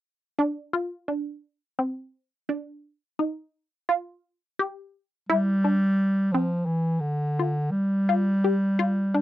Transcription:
0.39 synth arpeggio sound D4
0.73 synth arpeggio sound F4
1.08 synth arpeggio sound D4
1.79 synth arpeggio sound C4
2.49 synth arpeggio sound D4
3.19 synth arpeggio sound D#4
3.89 synth arpeggio sound F4
4.59 synth arpeggio sound G4
5.29 bass clarinet G3, synth arpeggio sound E4
5.64 synth arpeggio sound D4
6.32 bass clarinet F3, synth arpeggio sound C4
6.66 bass clarinet E3
7.00 bass clarinet D3
7.39 synth arpeggio sound F4
7.71 bass clarinet G3
8.09 synth arpeggio sound F4
8.44 synth arpeggio sound G4
8.79 synth arpeggio sound F4
9.14 synth arpeggio sound D4

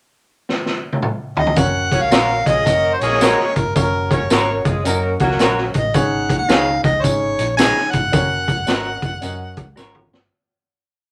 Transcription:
0.49 snare
0.66 snare
0.93 high tom
1.02 mid tom
1.37 harmonica D#5, floor tom
1.47 floor tom
1.56 fingered electric bass F#1, upright piano C#4 F#4 A#4 C#5, harmonica F#5, kick, closed hi-hat, tambourine
1.92 horn section C#4 F#4 A#4 C#5, kick, closed hi-hat
2.01 fingered electric bass C#2, harmonica F5
2.11 fingered electric bass A#1, horn section A#3 C#4 F#4 A#4, upright piano C#4 F#4 A#4 B4, clean electric guitar F#4 A#4 C#5, snare, closed hi-hat, tambourine
2.20 upright piano C#5
2.46 fingered electric bass A#1, horn section G#3 C#4 F4 G#4, harmonica D#5, kick, closed hi-hat
2.65 fingered electric bass F#1, horn section A#3 C#4 F#4 A#4, upright piano C#4 F#4 A#4 D#5, kick, closed hi-hat, tambourine
2.93 harmonica C5
3.01 fingered electric bass A#1, horn section G#3 A#3 C#4 G#4, harmonica C#5, closed hi-hat
3.12 snare
3.21 upright piano C#4 F#4 A#4 D#5, clean electric guitar F#4 A#4 C#5, snare, closed hi-hat, tambourine
3.40 snare
3.55 fingered electric bass G#1, harmonica A#4, kick, closed hi-hat
3.66 fingered electric bass G1
3.75 fingered electric bass F#1, upright piano C#4 F#4 A#4 C#5, harmonica A#4, kick, closed hi-hat, tambourine
4.10 horn section C#4 F#4 A#4 C#5, harmonica C#5, kick, closed hi-hat
4.21 fingered electric bass F#1
4.30 fingered electric bass G#1, horn section A#3 C#4 F#4 A#4, upright piano C#4 F#4 A#4 C#5, clean electric guitar F#4 A#4 C#5, snare, closed hi-hat, tambourine
4.65 fingered electric bass F#1, horn section G#3 C#4 F4 G#4, kick, closed hi-hat
4.84 fingered electric bass F#2, horn section A#3 C#4 F#4 A#4, upright piano C#4 F#4 A#4 D#5, closed hi-hat, tambourine
5.19 fingered electric bass C#2, horn section F#3 A#3 C#4 F#4, kick, closed hi-hat
5.31 snare
5.39 fingered electric bass A#1, upright piano C#4 F#4 A#4 C#5, clean electric guitar F#4 A#4 C#5, snare, closed hi-hat, tambourine
5.58 snare
5.74 fingered electric bass A1, harmonica D#5, kick, closed hi-hat
5.94 fingered electric bass G#1, upright piano C#4 D#4 G#4 C#5, harmonica F#5, kick, closed hi-hat, tambourine
6.29 kick, closed hi-hat
6.38 fingered electric bass D#2, harmonica F#5
6.49 fingered electric bass C#2, upright piano C#4 D#4 G#4 C#5, clean electric guitar D#4 G#4 C#5, harmonica F5, snare, closed hi-hat, tambourine
6.83 fingered electric bass C#2, harmonica D#5, kick, closed hi-hat
6.99 upright piano C#4, harmonica C5 C#5
7.04 fingered electric bass G#1, upright piano D#4 G#4 C#5, kick, closed hi-hat, tambourine
7.39 fingered electric bass A#1, closed hi-hat
7.57 upright piano C#4 D#4 G#4 C#5, clean electric guitar D#4 G#4 C#5, harmonica G#5, snare, closed hi-hat, tambourine
7.77 snare
7.91 fingered electric bass G#1, harmonica F#5, kick, closed hi-hat
8.04 fingered electric bass G1
8.12 fingered electric bass F#1, upright piano C#4 F#4 A#4 C#5, kick, closed hi-hat, tambourine
8.48 kick, closed hi-hat
8.58 fingered electric bass F#1
8.67 fingered electric bass G#1, upright piano C#4 F#4 A#4 D#5, clean electric guitar F#4 A#4 C#5, snare, closed hi-hat, tambourine
9.02 fingered electric bass F#1, kick, closed hi-hat
9.21 fingered electric bass F#2, upright piano C#4 F#4 A#4 D#5, closed hi-hat, tambourine
9.57 fingered electric bass C#2, kick, closed hi-hat
9.76 fingered electric bass G#1, upright piano C#4 F#4 A#4 C#5, clean electric guitar F#4 A#4 C#5, snare, tambourine
9.95 mid tom
10.11 fingered electric bass G1, snare

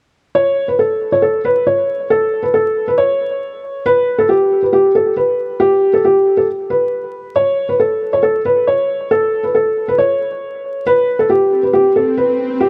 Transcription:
0.35 felt piano C#5
0.68 felt piano B4
0.79 felt piano A4
1.12 felt piano C#5
1.22 felt piano A4
1.45 felt piano B4
1.67 felt piano C#5
2.10 felt piano A4
2.43 felt piano B4
2.54 felt piano A4
2.88 felt piano B4
2.98 felt piano C#5
3.86 felt piano B4
4.18 felt piano A4
4.29 felt piano G4
4.62 felt piano B4
4.73 felt piano G4
4.95 felt piano A4
5.17 felt piano B4
5.60 felt piano G4
5.93 felt piano A4
6.05 felt piano G4
6.37 felt piano A4
6.70 felt piano B4
7.36 felt piano C#5
7.69 felt piano B4
7.80 felt piano A4
8.13 felt piano C#5
8.23 felt piano A4
8.45 felt piano B4
8.67 felt piano C#5
9.11 felt piano A4
9.43 felt piano B4
9.55 felt piano A4
9.88 felt piano B4
9.98 felt piano C#5
10.86 felt piano B4, swell
11.19 felt piano A4
11.30 felt piano G4
11.63 felt piano B4
11.73 felt piano G4
11.96 felt piano A4
12.17 felt piano B4
12.61 felt piano G4

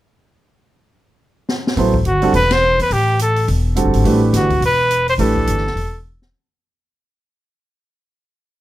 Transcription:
1.49 snare
1.67 snare
1.76 upright bass A1, grand piano F#3 B3 E4 A4 C5, open hi-hat
1.94 kick
2.05 upright bass G1, trumpet F#4, closed hi-hat
2.22 grand piano D3 G3 C4 F#4 A4, open hi-hat
2.34 upright bass E1, trumpet B4, open hi-hat
2.51 trumpet C5, snare, ride
2.79 upright bass E2, trumpet B4, open hi-hat
2.91 upright bass A1, trumpet G4, open hi-hat
3.19 trumpet A4, closed hi-hat
3.36 open hi-hat
3.48 upright bass E1, open hi-hat
3.75 grand piano D3 G3 C4 F#4 A4, closed hi-hat
3.85 upright bass G1
3.93 upright bass G#1, open hi-hat
4.04 upright bass A1, grand piano E3 A3 D4 G4 B4, open hi-hat
4.33 upright bass G1, trumpet F#4, snare, closed hi-hat
4.50 kick, open hi-hat
4.60 upright bass E1, open hi-hat
4.66 trumpet B4
4.91 closed hi-hat
5.08 trumpet C5, open hi-hat
5.18 upright bass A1, grand piano E3 A3 D4 G4 B4, trumpet A4, open hi-hat
5.36 kick
5.47 upright bass G1, closed hi-hat
5.57 snare
5.67 snare
5.75 upright bass E1, open hi-hat
6.22 snare

